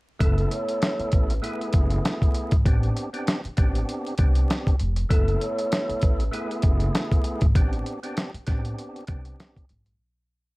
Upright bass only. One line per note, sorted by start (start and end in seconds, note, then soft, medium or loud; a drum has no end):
0.21 0.44 F#1 loud
0.99 muted upright bass stroke soft
1.13 1.36 A1 medium
1.74 1.97 F#1 loud
2.52 2.63 G#1 medium
2.66 2.89 A1 loud
3.44 muted upright bass stroke soft
3.58 3.81 A1 loud
4.19 4.42 C2 medium
4.81 5.04 F1 medium
5.11 5.34 F#1 loud
5.89 muted upright bass stroke soft
6.03 6.26 A1 medium
6.64 6.87 F#1 medium
7.42 7.52 G#1 medium
7.56 7.79 A1 loud
8.34 muted upright bass stroke soft
8.48 8.71 A1 loud
9.09 9.32 C2 medium
9.70 9.94 G#1 medium